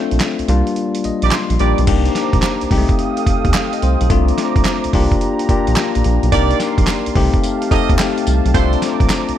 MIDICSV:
0, 0, Header, 1, 6, 480
1, 0, Start_track
1, 0, Tempo, 555556
1, 1622, Time_signature, 4, 2, 24, 8
1, 8104, End_track
2, 0, Start_track
2, 0, Title_t, "Analog synth pad"
2, 0, Program_c, 0, 89
2, 1627, Note_on_c, 0, 74, 73
2, 1628, Note_on_c, 0, 82, 74
2, 1631, Note_on_c, 0, 72, 77
2, 1631, Note_on_c, 0, 86, 91
2, 2337, Note_off_c, 0, 74, 0
2, 2338, Note_off_c, 0, 82, 0
2, 2340, Note_off_c, 0, 72, 0
2, 2340, Note_off_c, 0, 86, 0
2, 2342, Note_on_c, 0, 79, 71
2, 2344, Note_on_c, 0, 77, 79
2, 2344, Note_on_c, 0, 87, 87
2, 2345, Note_on_c, 0, 69, 82
2, 3530, Note_off_c, 0, 79, 0
2, 3531, Note_off_c, 0, 69, 0
2, 3531, Note_off_c, 0, 77, 0
2, 3531, Note_off_c, 0, 87, 0
2, 3545, Note_on_c, 0, 57, 79
2, 3545, Note_on_c, 0, 86, 94
2, 3546, Note_on_c, 0, 82, 73
2, 3548, Note_on_c, 0, 72, 72
2, 4256, Note_off_c, 0, 57, 0
2, 4257, Note_off_c, 0, 82, 0
2, 4257, Note_off_c, 0, 86, 0
2, 4258, Note_off_c, 0, 72, 0
2, 4267, Note_on_c, 0, 62, 76
2, 4267, Note_on_c, 0, 82, 79
2, 4269, Note_on_c, 0, 67, 85
2, 5453, Note_off_c, 0, 62, 0
2, 5453, Note_off_c, 0, 67, 0
2, 5453, Note_off_c, 0, 82, 0
2, 5463, Note_on_c, 0, 84, 68
2, 5465, Note_on_c, 0, 70, 78
2, 5466, Note_on_c, 0, 74, 76
2, 6175, Note_off_c, 0, 84, 0
2, 6176, Note_off_c, 0, 70, 0
2, 6177, Note_off_c, 0, 74, 0
2, 6188, Note_on_c, 0, 77, 71
2, 6188, Note_on_c, 0, 81, 79
2, 6189, Note_on_c, 0, 67, 89
2, 7373, Note_off_c, 0, 67, 0
2, 7373, Note_off_c, 0, 77, 0
2, 7384, Note_on_c, 0, 72, 83
2, 7385, Note_on_c, 0, 86, 91
2, 7386, Note_on_c, 0, 82, 79
2, 8086, Note_off_c, 0, 81, 0
2, 8096, Note_off_c, 0, 72, 0
2, 8096, Note_off_c, 0, 86, 0
2, 8104, Note_off_c, 0, 82, 0
2, 8104, End_track
3, 0, Start_track
3, 0, Title_t, "Horn section"
3, 0, Program_c, 1, 61
3, 1055, Note_on_c, 1, 63, 76
3, 1058, Note_on_c, 1, 67, 72
3, 1060, Note_on_c, 1, 74, 86
3, 1161, Note_off_c, 1, 63, 0
3, 1162, Note_off_c, 1, 67, 0
3, 1163, Note_off_c, 1, 74, 0
3, 1377, Note_on_c, 1, 63, 73
3, 1379, Note_on_c, 1, 67, 72
3, 1381, Note_on_c, 1, 74, 83
3, 1548, Note_off_c, 1, 63, 0
3, 1549, Note_off_c, 1, 67, 0
3, 1551, Note_off_c, 1, 74, 0
3, 5459, Note_on_c, 1, 63, 103
3, 5462, Note_on_c, 1, 70, 84
3, 5464, Note_on_c, 1, 74, 105
3, 5687, Note_off_c, 1, 63, 0
3, 5689, Note_off_c, 1, 70, 0
3, 5690, Note_off_c, 1, 74, 0
3, 6658, Note_on_c, 1, 67, 79
3, 6662, Note_on_c, 1, 69, 71
3, 6664, Note_on_c, 1, 75, 92
3, 6829, Note_off_c, 1, 67, 0
3, 6831, Note_off_c, 1, 69, 0
3, 6832, Note_off_c, 1, 75, 0
3, 7378, Note_on_c, 1, 62, 98
3, 7380, Note_on_c, 1, 69, 88
3, 7383, Note_on_c, 1, 72, 100
3, 7607, Note_off_c, 1, 62, 0
3, 7608, Note_off_c, 1, 69, 0
3, 7609, Note_off_c, 1, 72, 0
3, 8104, End_track
4, 0, Start_track
4, 0, Title_t, "Tine electric piano"
4, 0, Program_c, 2, 4
4, 0, Control_c, 2, 64, 127
4, 0, Note_on_c, 2, 57, 87
4, 0, Note_on_c, 2, 60, 78
4, 0, Note_on_c, 2, 62, 80
4, 0, Note_on_c, 2, 65, 85
4, 416, Note_off_c, 2, 62, 0
4, 418, Note_off_c, 2, 65, 0
4, 418, Note_on_c, 2, 55, 89
4, 420, Note_off_c, 2, 57, 0
4, 422, Note_off_c, 2, 60, 0
4, 422, Note_on_c, 2, 58, 84
4, 426, Note_on_c, 2, 62, 80
4, 428, Note_on_c, 2, 65, 100
4, 435, Control_c, 2, 64, 0
4, 580, Control_c, 2, 64, 127
4, 907, Note_on_c, 2, 75, 69
4, 1128, Note_off_c, 2, 75, 0
4, 1148, Note_on_c, 2, 84, 75
4, 1236, Note_off_c, 2, 55, 0
4, 1237, Note_off_c, 2, 58, 0
4, 1239, Note_off_c, 2, 62, 0
4, 1241, Note_off_c, 2, 65, 0
4, 1382, Note_on_c, 2, 55, 88
4, 1385, Note_on_c, 2, 58, 75
4, 1388, Note_on_c, 2, 62, 80
4, 1392, Note_on_c, 2, 67, 94
4, 1592, Note_off_c, 2, 84, 0
4, 1593, Note_off_c, 2, 55, 0
4, 1595, Note_off_c, 2, 58, 0
4, 1596, Note_off_c, 2, 62, 0
4, 1598, Note_off_c, 2, 67, 0
4, 1622, Note_on_c, 2, 58, 87
4, 1625, Note_on_c, 2, 62, 76
4, 1629, Note_on_c, 2, 63, 76
4, 1632, Note_on_c, 2, 67, 94
4, 1633, Control_c, 2, 64, 0
4, 1777, Control_c, 2, 64, 127
4, 2338, Note_off_c, 2, 63, 0
4, 2340, Note_on_c, 2, 56, 68
4, 2341, Note_off_c, 2, 67, 0
4, 2342, Note_off_c, 2, 58, 0
4, 2343, Note_off_c, 2, 62, 0
4, 2345, Note_on_c, 2, 60, 85
4, 2348, Note_on_c, 2, 63, 81
4, 2351, Note_on_c, 2, 67, 96
4, 2354, Control_c, 2, 64, 0
4, 2397, Note_on_c, 2, 57, 91
4, 2415, Note_off_c, 2, 56, 0
4, 2507, Control_c, 2, 64, 127
4, 2766, Note_off_c, 2, 60, 0
4, 2768, Note_off_c, 2, 63, 0
4, 2769, Note_off_c, 2, 67, 0
4, 2792, Note_off_c, 2, 57, 0
4, 3227, Note_on_c, 2, 75, 66
4, 3302, Note_off_c, 2, 75, 0
4, 3310, Note_on_c, 2, 72, 73
4, 3456, Note_off_c, 2, 72, 0
4, 3463, Note_on_c, 2, 69, 65
4, 3545, Note_on_c, 2, 57, 85
4, 3549, Note_on_c, 2, 60, 79
4, 3550, Note_on_c, 2, 62, 77
4, 3554, Control_c, 2, 64, 0
4, 3554, Note_on_c, 2, 65, 100
4, 3689, Note_off_c, 2, 69, 0
4, 3709, Control_c, 2, 64, 127
4, 4260, Note_off_c, 2, 62, 0
4, 4262, Note_off_c, 2, 65, 0
4, 4264, Note_off_c, 2, 57, 0
4, 4265, Note_off_c, 2, 60, 0
4, 4265, Note_on_c, 2, 58, 89
4, 4270, Note_on_c, 2, 62, 86
4, 4272, Note_on_c, 2, 65, 84
4, 4273, Control_c, 2, 64, 0
4, 4276, Note_on_c, 2, 67, 101
4, 4436, Control_c, 2, 64, 127
4, 4686, Note_off_c, 2, 58, 0
4, 4689, Note_off_c, 2, 62, 0
4, 4690, Note_off_c, 2, 65, 0
4, 4691, Note_off_c, 2, 67, 0
4, 4744, Note_on_c, 2, 58, 84
4, 4749, Note_on_c, 2, 62, 75
4, 4751, Note_on_c, 2, 65, 76
4, 4755, Note_on_c, 2, 67, 93
4, 5373, Note_off_c, 2, 58, 0
4, 5376, Note_off_c, 2, 62, 0
4, 5377, Note_off_c, 2, 65, 0
4, 5379, Note_off_c, 2, 67, 0
4, 5462, Note_on_c, 2, 58, 88
4, 5467, Note_on_c, 2, 62, 77
4, 5471, Note_on_c, 2, 63, 78
4, 5472, Note_on_c, 2, 67, 102
4, 5475, Control_c, 2, 64, 0
4, 5637, Control_c, 2, 64, 127
4, 6179, Note_off_c, 2, 63, 0
4, 6181, Note_off_c, 2, 67, 0
4, 6182, Note_off_c, 2, 58, 0
4, 6182, Note_on_c, 2, 57, 91
4, 6184, Note_off_c, 2, 62, 0
4, 6185, Note_on_c, 2, 60, 84
4, 6189, Note_on_c, 2, 63, 83
4, 6192, Note_on_c, 2, 67, 104
4, 6193, Control_c, 2, 64, 0
4, 6368, Control_c, 2, 64, 127
4, 6604, Note_off_c, 2, 57, 0
4, 6606, Note_off_c, 2, 60, 0
4, 6608, Note_off_c, 2, 63, 0
4, 6610, Note_off_c, 2, 67, 0
4, 6660, Note_on_c, 2, 57, 87
4, 6665, Note_on_c, 2, 60, 74
4, 6668, Note_on_c, 2, 63, 79
4, 6671, Note_on_c, 2, 67, 92
4, 7292, Note_off_c, 2, 57, 0
4, 7294, Note_off_c, 2, 60, 0
4, 7296, Note_off_c, 2, 63, 0
4, 7297, Note_off_c, 2, 67, 0
4, 7381, Note_on_c, 2, 57, 86
4, 7385, Note_on_c, 2, 60, 87
4, 7391, Note_on_c, 2, 62, 87
4, 7392, Control_c, 2, 64, 0
4, 7393, Note_on_c, 2, 65, 93
4, 7520, Control_c, 2, 64, 127
4, 8095, Note_off_c, 2, 62, 0
4, 8098, Note_off_c, 2, 65, 0
4, 8102, Note_off_c, 2, 57, 0
4, 8104, Note_off_c, 2, 60, 0
4, 8104, End_track
5, 0, Start_track
5, 0, Title_t, "Analog synth bass"
5, 0, Program_c, 3, 38
5, 102, Note_on_c, 3, 34, 87
5, 163, Note_off_c, 3, 34, 0
5, 337, Note_on_c, 3, 36, 49
5, 370, Note_off_c, 3, 36, 0
5, 418, Note_on_c, 3, 36, 111
5, 540, Note_off_c, 3, 36, 0
5, 903, Note_on_c, 3, 34, 50
5, 966, Note_off_c, 3, 34, 0
5, 1060, Note_on_c, 3, 34, 93
5, 1122, Note_off_c, 3, 34, 0
5, 1296, Note_on_c, 3, 34, 98
5, 1360, Note_off_c, 3, 34, 0
5, 1383, Note_on_c, 3, 34, 100
5, 1503, Note_off_c, 3, 34, 0
5, 1543, Note_on_c, 3, 35, 102
5, 1604, Note_off_c, 3, 35, 0
5, 1620, Note_on_c, 3, 36, 108
5, 1804, Note_off_c, 3, 36, 0
5, 2015, Note_on_c, 3, 34, 87
5, 2080, Note_off_c, 3, 34, 0
5, 2268, Note_on_c, 3, 36, 52
5, 2299, Note_off_c, 3, 36, 0
5, 2344, Note_on_c, 3, 36, 106
5, 2463, Note_off_c, 3, 36, 0
5, 2823, Note_on_c, 3, 39, 51
5, 2886, Note_off_c, 3, 39, 0
5, 2982, Note_on_c, 3, 39, 91
5, 3044, Note_off_c, 3, 39, 0
5, 3306, Note_on_c, 3, 36, 86
5, 3425, Note_off_c, 3, 36, 0
5, 3465, Note_on_c, 3, 35, 88
5, 3526, Note_off_c, 3, 35, 0
5, 3544, Note_on_c, 3, 36, 118
5, 3726, Note_off_c, 3, 36, 0
5, 3940, Note_on_c, 3, 34, 88
5, 4003, Note_off_c, 3, 34, 0
5, 4188, Note_on_c, 3, 36, 51
5, 4219, Note_off_c, 3, 36, 0
5, 4265, Note_on_c, 3, 36, 112
5, 4384, Note_off_c, 3, 36, 0
5, 4743, Note_on_c, 3, 34, 50
5, 4806, Note_off_c, 3, 34, 0
5, 4906, Note_on_c, 3, 34, 94
5, 4966, Note_off_c, 3, 34, 0
5, 5149, Note_on_c, 3, 34, 95
5, 5208, Note_off_c, 3, 34, 0
5, 5230, Note_on_c, 3, 34, 97
5, 5347, Note_off_c, 3, 34, 0
5, 5384, Note_on_c, 3, 35, 96
5, 5445, Note_off_c, 3, 35, 0
5, 5463, Note_on_c, 3, 36, 110
5, 5646, Note_off_c, 3, 36, 0
5, 5860, Note_on_c, 3, 34, 83
5, 5923, Note_off_c, 3, 34, 0
5, 6105, Note_on_c, 3, 36, 47
5, 6137, Note_off_c, 3, 36, 0
5, 6185, Note_on_c, 3, 36, 95
5, 6304, Note_off_c, 3, 36, 0
5, 6664, Note_on_c, 3, 39, 51
5, 6727, Note_off_c, 3, 39, 0
5, 6822, Note_on_c, 3, 39, 91
5, 6884, Note_off_c, 3, 39, 0
5, 7147, Note_on_c, 3, 36, 89
5, 7265, Note_off_c, 3, 36, 0
5, 7303, Note_on_c, 3, 35, 97
5, 7365, Note_off_c, 3, 35, 0
5, 7382, Note_on_c, 3, 36, 114
5, 7565, Note_off_c, 3, 36, 0
5, 7781, Note_on_c, 3, 34, 92
5, 7843, Note_off_c, 3, 34, 0
5, 8023, Note_on_c, 3, 36, 50
5, 8055, Note_off_c, 3, 36, 0
5, 8104, End_track
6, 0, Start_track
6, 0, Title_t, "Drums"
6, 98, Note_on_c, 9, 42, 52
6, 172, Note_on_c, 9, 39, 97
6, 177, Note_on_c, 9, 38, 112
6, 180, Note_off_c, 9, 39, 0
6, 180, Note_on_c, 9, 39, 70
6, 181, Note_off_c, 9, 42, 0
6, 181, Note_on_c, 9, 42, 76
6, 264, Note_off_c, 9, 38, 0
6, 267, Note_off_c, 9, 39, 0
6, 267, Note_off_c, 9, 42, 0
6, 338, Note_on_c, 9, 42, 54
6, 418, Note_off_c, 9, 42, 0
6, 418, Note_on_c, 9, 42, 75
6, 505, Note_off_c, 9, 42, 0
6, 578, Note_on_c, 9, 42, 53
6, 658, Note_off_c, 9, 42, 0
6, 658, Note_on_c, 9, 42, 64
6, 744, Note_off_c, 9, 42, 0
6, 818, Note_on_c, 9, 42, 65
6, 900, Note_off_c, 9, 42, 0
6, 900, Note_on_c, 9, 42, 65
6, 986, Note_off_c, 9, 42, 0
6, 1055, Note_on_c, 9, 42, 49
6, 1135, Note_on_c, 9, 39, 88
6, 1139, Note_off_c, 9, 42, 0
6, 1139, Note_on_c, 9, 38, 111
6, 1139, Note_on_c, 9, 42, 72
6, 1142, Note_off_c, 9, 39, 0
6, 1142, Note_on_c, 9, 39, 83
6, 1225, Note_off_c, 9, 42, 0
6, 1226, Note_off_c, 9, 38, 0
6, 1228, Note_off_c, 9, 39, 0
6, 1297, Note_on_c, 9, 42, 51
6, 1377, Note_off_c, 9, 42, 0
6, 1377, Note_on_c, 9, 42, 66
6, 1464, Note_off_c, 9, 42, 0
6, 1539, Note_on_c, 9, 42, 50
6, 1617, Note_off_c, 9, 42, 0
6, 1617, Note_on_c, 9, 42, 85
6, 1618, Note_on_c, 9, 49, 90
6, 1619, Note_on_c, 9, 36, 108
6, 1704, Note_off_c, 9, 42, 0
6, 1704, Note_off_c, 9, 49, 0
6, 1705, Note_off_c, 9, 36, 0
6, 1775, Note_on_c, 9, 42, 55
6, 1859, Note_on_c, 9, 38, 68
6, 1862, Note_off_c, 9, 42, 0
6, 1863, Note_on_c, 9, 42, 81
6, 1946, Note_off_c, 9, 38, 0
6, 1950, Note_off_c, 9, 42, 0
6, 2015, Note_on_c, 9, 36, 100
6, 2016, Note_on_c, 9, 42, 55
6, 2092, Note_on_c, 9, 39, 88
6, 2097, Note_on_c, 9, 38, 119
6, 2101, Note_off_c, 9, 36, 0
6, 2101, Note_off_c, 9, 39, 0
6, 2101, Note_off_c, 9, 42, 0
6, 2101, Note_on_c, 9, 39, 81
6, 2101, Note_on_c, 9, 42, 79
6, 2183, Note_off_c, 9, 38, 0
6, 2187, Note_off_c, 9, 42, 0
6, 2188, Note_off_c, 9, 39, 0
6, 2258, Note_on_c, 9, 42, 55
6, 2340, Note_on_c, 9, 36, 87
6, 2341, Note_on_c, 9, 46, 81
6, 2344, Note_off_c, 9, 42, 0
6, 2427, Note_off_c, 9, 36, 0
6, 2427, Note_off_c, 9, 46, 0
6, 2497, Note_on_c, 9, 36, 91
6, 2499, Note_on_c, 9, 42, 48
6, 2581, Note_off_c, 9, 42, 0
6, 2581, Note_on_c, 9, 42, 66
6, 2583, Note_off_c, 9, 36, 0
6, 2668, Note_off_c, 9, 42, 0
6, 2739, Note_on_c, 9, 42, 64
6, 2821, Note_on_c, 9, 36, 89
6, 2823, Note_off_c, 9, 42, 0
6, 2823, Note_on_c, 9, 42, 72
6, 2908, Note_off_c, 9, 36, 0
6, 2910, Note_off_c, 9, 42, 0
6, 2978, Note_on_c, 9, 42, 51
6, 2979, Note_on_c, 9, 36, 88
6, 3058, Note_on_c, 9, 39, 93
6, 3061, Note_off_c, 9, 39, 0
6, 3061, Note_on_c, 9, 39, 88
6, 3062, Note_off_c, 9, 42, 0
6, 3062, Note_on_c, 9, 42, 72
6, 3063, Note_on_c, 9, 38, 112
6, 3065, Note_off_c, 9, 36, 0
6, 3148, Note_off_c, 9, 39, 0
6, 3148, Note_off_c, 9, 42, 0
6, 3149, Note_off_c, 9, 38, 0
6, 3221, Note_on_c, 9, 42, 49
6, 3304, Note_off_c, 9, 42, 0
6, 3304, Note_on_c, 9, 42, 69
6, 3390, Note_off_c, 9, 42, 0
6, 3463, Note_on_c, 9, 42, 52
6, 3542, Note_off_c, 9, 42, 0
6, 3542, Note_on_c, 9, 36, 110
6, 3542, Note_on_c, 9, 42, 85
6, 3629, Note_off_c, 9, 36, 0
6, 3629, Note_off_c, 9, 42, 0
6, 3702, Note_on_c, 9, 42, 54
6, 3782, Note_on_c, 9, 38, 66
6, 3785, Note_off_c, 9, 42, 0
6, 3785, Note_on_c, 9, 42, 81
6, 3868, Note_off_c, 9, 38, 0
6, 3872, Note_off_c, 9, 42, 0
6, 3938, Note_on_c, 9, 36, 97
6, 3941, Note_on_c, 9, 42, 54
6, 4015, Note_on_c, 9, 39, 94
6, 4020, Note_on_c, 9, 38, 116
6, 4023, Note_off_c, 9, 39, 0
6, 4023, Note_on_c, 9, 39, 78
6, 4024, Note_off_c, 9, 36, 0
6, 4024, Note_off_c, 9, 42, 0
6, 4024, Note_on_c, 9, 42, 82
6, 4106, Note_off_c, 9, 38, 0
6, 4110, Note_off_c, 9, 39, 0
6, 4110, Note_off_c, 9, 42, 0
6, 4182, Note_on_c, 9, 42, 53
6, 4262, Note_on_c, 9, 36, 89
6, 4263, Note_on_c, 9, 46, 79
6, 4269, Note_off_c, 9, 42, 0
6, 4349, Note_off_c, 9, 36, 0
6, 4349, Note_off_c, 9, 46, 0
6, 4418, Note_on_c, 9, 36, 83
6, 4421, Note_on_c, 9, 42, 51
6, 4502, Note_off_c, 9, 42, 0
6, 4502, Note_on_c, 9, 42, 68
6, 4505, Note_off_c, 9, 36, 0
6, 4589, Note_off_c, 9, 42, 0
6, 4660, Note_on_c, 9, 42, 67
6, 4743, Note_on_c, 9, 36, 85
6, 4745, Note_off_c, 9, 42, 0
6, 4745, Note_on_c, 9, 42, 72
6, 4829, Note_off_c, 9, 36, 0
6, 4832, Note_off_c, 9, 42, 0
6, 4901, Note_on_c, 9, 42, 52
6, 4979, Note_on_c, 9, 39, 90
6, 4981, Note_off_c, 9, 39, 0
6, 4981, Note_on_c, 9, 39, 84
6, 4983, Note_off_c, 9, 42, 0
6, 4983, Note_on_c, 9, 38, 124
6, 4983, Note_on_c, 9, 42, 81
6, 5068, Note_off_c, 9, 39, 0
6, 5069, Note_off_c, 9, 42, 0
6, 5070, Note_off_c, 9, 38, 0
6, 5143, Note_on_c, 9, 42, 53
6, 5222, Note_off_c, 9, 42, 0
6, 5222, Note_on_c, 9, 42, 74
6, 5308, Note_off_c, 9, 42, 0
6, 5384, Note_on_c, 9, 42, 56
6, 5462, Note_off_c, 9, 42, 0
6, 5462, Note_on_c, 9, 42, 82
6, 5463, Note_on_c, 9, 36, 105
6, 5463, Note_on_c, 9, 54, 62
6, 5549, Note_off_c, 9, 36, 0
6, 5549, Note_off_c, 9, 42, 0
6, 5549, Note_off_c, 9, 54, 0
6, 5622, Note_on_c, 9, 42, 59
6, 5701, Note_on_c, 9, 38, 69
6, 5701, Note_on_c, 9, 54, 67
6, 5704, Note_off_c, 9, 42, 0
6, 5704, Note_on_c, 9, 42, 81
6, 5787, Note_off_c, 9, 38, 0
6, 5788, Note_off_c, 9, 54, 0
6, 5791, Note_off_c, 9, 42, 0
6, 5857, Note_on_c, 9, 36, 95
6, 5859, Note_on_c, 9, 42, 61
6, 5934, Note_on_c, 9, 39, 102
6, 5939, Note_on_c, 9, 38, 118
6, 5941, Note_off_c, 9, 39, 0
6, 5941, Note_on_c, 9, 39, 79
6, 5941, Note_on_c, 9, 54, 93
6, 5943, Note_off_c, 9, 36, 0
6, 5943, Note_off_c, 9, 42, 0
6, 5943, Note_on_c, 9, 42, 81
6, 6025, Note_off_c, 9, 38, 0
6, 6027, Note_off_c, 9, 39, 0
6, 6027, Note_off_c, 9, 54, 0
6, 6029, Note_off_c, 9, 42, 0
6, 6102, Note_on_c, 9, 42, 55
6, 6182, Note_on_c, 9, 36, 90
6, 6182, Note_on_c, 9, 46, 76
6, 6189, Note_off_c, 9, 42, 0
6, 6268, Note_off_c, 9, 36, 0
6, 6268, Note_off_c, 9, 46, 0
6, 6338, Note_on_c, 9, 36, 87
6, 6340, Note_on_c, 9, 42, 51
6, 6424, Note_off_c, 9, 42, 0
6, 6424, Note_on_c, 9, 42, 66
6, 6425, Note_off_c, 9, 36, 0
6, 6427, Note_on_c, 9, 54, 72
6, 6510, Note_off_c, 9, 42, 0
6, 6514, Note_off_c, 9, 54, 0
6, 6582, Note_on_c, 9, 42, 67
6, 6663, Note_on_c, 9, 36, 88
6, 6665, Note_on_c, 9, 54, 63
6, 6668, Note_off_c, 9, 42, 0
6, 6668, Note_on_c, 9, 42, 71
6, 6749, Note_off_c, 9, 36, 0
6, 6752, Note_off_c, 9, 54, 0
6, 6754, Note_off_c, 9, 42, 0
6, 6821, Note_on_c, 9, 36, 85
6, 6822, Note_on_c, 9, 42, 52
6, 6900, Note_on_c, 9, 39, 89
6, 6901, Note_off_c, 9, 39, 0
6, 6901, Note_on_c, 9, 39, 90
6, 6906, Note_off_c, 9, 42, 0
6, 6906, Note_on_c, 9, 38, 120
6, 6906, Note_on_c, 9, 42, 69
6, 6907, Note_off_c, 9, 36, 0
6, 6907, Note_on_c, 9, 54, 87
6, 6988, Note_off_c, 9, 39, 0
6, 6992, Note_off_c, 9, 42, 0
6, 6993, Note_off_c, 9, 38, 0
6, 6993, Note_off_c, 9, 54, 0
6, 7064, Note_on_c, 9, 42, 52
6, 7143, Note_off_c, 9, 42, 0
6, 7143, Note_on_c, 9, 42, 74
6, 7146, Note_on_c, 9, 54, 73
6, 7229, Note_off_c, 9, 42, 0
6, 7232, Note_off_c, 9, 54, 0
6, 7306, Note_on_c, 9, 42, 49
6, 7382, Note_on_c, 9, 36, 110
6, 7383, Note_off_c, 9, 42, 0
6, 7383, Note_on_c, 9, 42, 87
6, 7383, Note_on_c, 9, 54, 62
6, 7469, Note_off_c, 9, 36, 0
6, 7469, Note_off_c, 9, 42, 0
6, 7470, Note_off_c, 9, 54, 0
6, 7542, Note_on_c, 9, 42, 52
6, 7620, Note_on_c, 9, 38, 70
6, 7621, Note_on_c, 9, 54, 67
6, 7624, Note_off_c, 9, 42, 0
6, 7624, Note_on_c, 9, 42, 89
6, 7707, Note_off_c, 9, 38, 0
6, 7708, Note_off_c, 9, 54, 0
6, 7711, Note_off_c, 9, 42, 0
6, 7778, Note_on_c, 9, 36, 96
6, 7781, Note_on_c, 9, 42, 56
6, 7858, Note_on_c, 9, 39, 92
6, 7862, Note_off_c, 9, 39, 0
6, 7862, Note_on_c, 9, 39, 79
6, 7863, Note_on_c, 9, 38, 121
6, 7864, Note_off_c, 9, 36, 0
6, 7864, Note_on_c, 9, 54, 96
6, 7866, Note_off_c, 9, 42, 0
6, 7866, Note_on_c, 9, 42, 83
6, 7948, Note_off_c, 9, 39, 0
6, 7949, Note_off_c, 9, 38, 0
6, 7951, Note_off_c, 9, 54, 0
6, 7953, Note_off_c, 9, 42, 0
6, 8023, Note_on_c, 9, 42, 61
6, 8104, Note_off_c, 9, 42, 0
6, 8104, End_track
0, 0, End_of_file